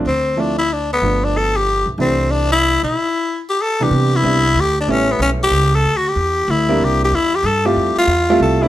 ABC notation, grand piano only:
X:1
M:3/4
L:1/8
Q:"Swing" 1/4=187
K:C
V:1 name="Grand piano"
z2 [F,A,CE] z3 | [F,A,B,D]4- [F,A,B,D] z | [E,G,A,D]4- [E,G,A,D] z | z4 z [C,,E,G,B,D]- |
[C,,E,G,B,D]2 [G,B,CDE] z3 | [G,A,B,^CE]4- [G,A,B,CE] z | z4 z [G,_B,CDE]- | [G,_B,CDE]2 z3 [G,A,CEF]- |
[G,A,CEF]2 z [G,A,CEF]2 [G,A,B,DE] |]